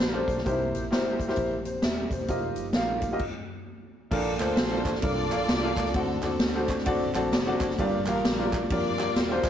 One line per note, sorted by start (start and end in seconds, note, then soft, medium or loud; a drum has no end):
0.00 0.24 A#1 medium
0.00 0.44 D3 medium
0.00 3.17 A#3 medium
0.00 2.26 C4 medium
0.00 0.42 F4 medium
0.00 0.42 G4 medium
0.00 0.43 A4 medium
0.00 0.24 C5 medium
0.00 0.28 C5 medium
0.00 snare loud
0.00 closed hi-hat medium
0.13 0.38 A#3 medium
0.13 0.38 D4 medium
0.13 0.38 A4 medium
0.13 0.38 C5 medium
0.28 0.43 B1 medium
0.28 kick medium
0.28 closed hi-hat medium
0.38 snare soft
0.44 0.70 C2 loud
0.44 1.16 C3 medium
0.44 2.27 E3 medium
0.44 0.81 A#3 medium
0.44 0.52 D#4 medium
0.44 3.17 G4 medium
0.44 0.82 G4 medium
0.44 0.82 C5 medium
0.44 kick medium
0.44 closed hi-hat medium
0.51 0.84 E4 medium
0.74 0.92 A#1 medium
0.74 closed hi-hat medium
0.91 1.30 G1 medium
0.91 1.21 A#3 medium
0.91 1.21 E4 medium
0.91 1.21 G4 medium
0.91 1.22 C5 medium
0.91 snare loud
0.91 closed hi-hat medium
1.20 kick medium
1.20 closed hi-hat medium
1.27 1.53 A#3 medium
1.27 1.54 E4 medium
1.27 1.54 G4 medium
1.27 1.54 C5 medium
1.27 snare soft
1.36 1.76 A#1 medium
1.36 kick medium
1.36 closed hi-hat medium
1.65 1.82 C5 medium
1.65 closed hi-hat medium
1.82 2.07 D#1 medium
1.82 2.10 E5 medium
1.82 snare loud
1.82 closed hi-hat medium
2.11 2.26 E1 medium
2.11 2.56 C5 medium
2.11 kick medium
2.11 closed hi-hat medium
2.27 2.53 F1 medium
2.27 3.19 F3 medium
2.27 2.65 A#3 medium
2.27 3.19 D#4 medium
2.27 2.65 F4 medium
2.27 2.65 G4 medium
2.27 2.66 D#5 medium
2.27 kick medium
2.27 closed hi-hat medium
2.56 2.72 G1 medium
2.56 closed hi-hat medium
2.73 3.14 A#1 medium
2.73 3.05 A#3 medium
2.73 3.05 F4 medium
2.73 3.05 G4 medium
2.73 3.05 F5 medium
2.73 snare loud
2.73 closed hi-hat medium
3.02 kick medium
3.02 closed hi-hat medium
3.12 3.21 A#3 medium
3.12 3.21 F4 medium
3.12 3.21 G4 medium
3.12 3.21 D#5 medium
3.19 kick medium
3.19 crash medium
4.11 4.36 A#1 loud
4.11 4.82 A#2 medium
4.11 5.93 F3 medium
4.11 4.32 A#3 medium
4.11 5.93 A#3 medium
4.11 4.32 D4 medium
4.11 5.93 D4 medium
4.11 4.32 F4 medium
4.11 4.32 A4 medium
4.11 5.93 A4 medium
4.11 4.33 D5 medium
4.11 kick medium
4.11 crash medium
4.39 4.55 D2 loud
4.39 4.59 A#3 medium
4.39 4.60 D4 medium
4.39 4.60 F4 medium
4.39 5.03 F4 medium
4.39 4.60 A4 medium
4.39 5.03 A4 medium
4.39 5.00 C5 loud
4.39 4.60 C5 medium
4.39 clap medium
4.39 ride medium
4.57 4.82 A#1 loud
4.57 snare loud
4.57 ride medium
4.71 4.96 A#3 medium
4.71 4.96 D4 medium
4.71 4.96 F4 medium
4.71 4.96 A4 medium
4.71 4.97 D5 medium
4.85 5.00 A1 medium
4.85 kick medium
4.85 clap loud
4.85 ride medium
4.95 snare soft
5.02 5.30 C2 loud
5.02 5.23 A#3 medium
5.02 5.23 D4 medium
5.02 5.24 F4 medium
5.02 5.91 F4 medium
5.02 5.24 A4 medium
5.02 5.91 A4 medium
5.02 5.24 D5 medium
5.02 5.95 D5 loud
5.02 kick loud
5.02 ride medium
5.30 5.46 A#1 loud
5.30 5.51 A#3 medium
5.30 5.51 D4 medium
5.30 5.51 F4 medium
5.30 5.52 A4 medium
5.30 5.52 F5 medium
5.30 clap medium
5.30 ride medium
5.49 5.73 C2 medium
5.49 snare loud
5.49 ride medium
5.62 5.87 A#3 medium
5.62 5.87 D4 medium
5.62 5.88 F4 medium
5.62 5.88 A4 medium
5.62 5.88 F5 loud
5.77 5.92 C#2 loud
5.77 kick loud
5.77 clap loud
5.77 ride medium
5.86 snare soft
5.94 6.19 D2 loud
5.94 9.50 D3 medium
5.94 6.65 D3 medium
5.94 7.76 A3 medium
5.94 7.75 C4 medium
5.94 6.15 C4 medium
5.94 6.23 C4 medium
5.94 6.15 D4 medium
5.94 7.76 F#4 medium
5.94 6.23 F#4 medium
5.94 6.16 F#4 medium
5.94 6.23 A4 loud
5.94 6.16 A4 medium
5.94 6.16 D5 medium
5.94 kick loud
5.94 ride medium
6.22 6.38 D#2 medium
6.22 6.43 C4 medium
6.22 7.11 C4 medium
6.22 6.43 D4 medium
6.22 6.43 F#4 medium
6.22 7.11 F#4 medium
6.22 6.43 A4 medium
6.22 6.83 A4 medium
6.22 6.43 D5 medium
6.22 clap medium
6.22 ride medium
6.39 6.87 D2 medium
6.39 snare loud
6.39 ride medium
6.54 6.79 C4 medium
6.54 6.79 D4 medium
6.54 6.79 F#4 medium
6.54 6.79 A4 medium
6.54 6.80 C5 medium
6.68 kick medium
6.68 clap loud
6.68 ride medium
6.78 snare soft
6.85 7.11 C2 medium
6.85 7.06 C4 medium
6.85 7.07 D4 medium
6.85 7.07 F#4 medium
6.85 7.07 A4 medium
6.85 7.07 D5 loud
6.85 kick loud
6.85 ride medium
7.14 7.30 A#1 loud
7.14 7.34 C4 medium
7.14 7.34 D4 medium
7.14 7.35 F#4 medium
7.14 7.35 A4 medium
7.14 7.32 D5 medium
7.14 7.31 A5 medium
7.14 clap medium
7.14 ride medium
7.33 7.56 F1 loud
7.33 7.46 D5 medium
7.33 snare loud
7.33 ride medium
7.46 7.71 C4 medium
7.46 7.71 D4 medium
7.46 7.71 F#4 medium
7.46 7.71 A4 medium
7.46 7.71 D5 loud
7.60 7.75 F#1 loud
7.60 kick loud
7.60 clap loud
7.60 ride medium
7.70 snare soft
7.79 8.02 G1 loud
7.79 8.49 G2 medium
7.79 9.50 G3 medium
7.79 9.50 A#3 medium
7.79 7.99 A#3 medium
7.79 7.99 D4 medium
7.79 7.99 F4 medium
7.79 9.50 F4 medium
7.79 7.99 G4 medium
7.79 7.99 D5 loud
7.79 kick loud
7.79 ride medium
8.06 8.21 A1 loud
8.06 8.26 A#3 medium
8.06 8.94 D4 medium
8.06 8.26 D4 medium
8.06 8.70 F4 medium
8.06 8.27 F4 medium
8.06 8.27 G4 medium
8.06 8.65 A#4 medium
8.06 8.27 F5 medium
8.06 clap medium
8.06 ride medium
8.24 8.63 A#1 loud
8.24 snare loud
8.24 ride medium
8.38 8.62 A#3 medium
8.38 8.63 D4 medium
8.38 8.63 F4 medium
8.38 8.63 G4 medium
8.38 8.63 D5 medium
8.53 kick medium
8.53 clap loud
8.53 ride medium
8.70 9.09 F2 medium
8.70 8.90 A#3 medium
8.70 8.91 D4 medium
8.70 9.50 F4 medium
8.70 8.91 F4 medium
8.70 8.91 G4 medium
8.70 9.50 A#4 medium
8.70 9.44 D5 loud
8.70 8.91 D5 medium
8.70 kick loud
8.70 ride medium
8.99 9.18 A#3 medium
8.99 9.18 D4 medium
8.99 9.18 F4 medium
8.99 9.18 G4 medium
8.99 9.19 D5 medium
8.99 clap medium
8.99 ride medium
9.16 9.40 D#1 medium
9.16 snare loud
9.16 ride medium
9.30 9.50 A#3 medium
9.30 9.50 D4 medium
9.30 9.50 F4 medium
9.30 9.50 G4 medium
9.30 9.50 C5 loud
9.44 9.50 E1 medium
9.44 kick loud
9.44 clap loud
9.44 ride medium